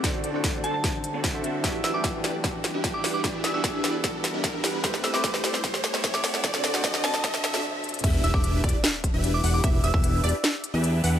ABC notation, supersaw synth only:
X:1
M:4/4
L:1/16
Q:1/4=150
K:Em
V:1 name="Supersaw synth"
[CDd]2 [CDFAd] [CDFAd]3 [CDFAc] z4 [CDFAd]3 [CDFAe]2 | [EBe]2 [DEGBe] [DEGBe]3 [DEGBd] z4 [DEGBe]3 [DEGBf]2 | [EB]2 [DEGBe] [DEGBe]3 [DEGBd] z4 [DEGBe]3 [DEGBf]2 | [CEGAe]2 [CEGAe] [CEGAe]3 [CEGAd] z4 [CEGAe]3 [CEGAf]2 |
[CDFd]2 [CDFAd] [CDFAd]3 [CDFAc] z4 [CDFAd] z4 | [DEGBe]2 [DEGBe] [DEGBe]3 [DEGBd] z4 [DEGBe]3 [DEGBf]2 | [DEGBe]2 [DEGBe] z3 [DEGBd] z4 [DEGBe]3 [DEGBf]2 |]